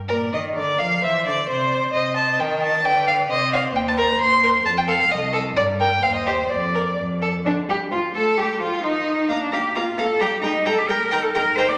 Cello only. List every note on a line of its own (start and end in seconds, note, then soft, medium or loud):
0.10 0.34 A#2 medium
0.33 0.57 D#3 medium
0.56 0.79 D3 medium
0.79 1.02 F3 medium
1.03 1.25 E3 medium
1.26 1.34 D3 medium
1.48 1.92 C3 medium
1.93 2.40 C3 medium
2.39 2.84 D#3 medium
2.84 3.28 D3 medium
3.29 3.72 C3 medium
3.73 4.11 D#2 medium
4.18 4.57 D#2 medium
4.63 5.02 F2 medium
5.10 5.48 C2 medium
5.56 5.95 G2 medium
6.03 6.42 D#2 medium
6.50 6.90 F2 medium
6.98 7.38 F2 medium
7.45 7.53 D4 medium
7.69 7.77 G4 medium
7.92 8.00 F4 medium
8.15 8.39 A4 medium
8.38 8.62 G4 medium
8.61 8.83 F4 medium
8.83 9.32 D#4 medium
9.30 9.54 D4 medium
9.53 9.78 G4 medium
9.76 10.00 F4 medium
9.98 10.22 A4 loud
10.21 10.43 G4 medium
10.43 10.67 D#4 medium
10.66 10.80 A4 loud
10.78 10.90 G4 medium
10.88 11.24 A#4 loud
11.22 11.32 A4 loud
11.33 11.57 A#4 loud
11.56 11.70 C5 loud
11.69 11.78 D5 loud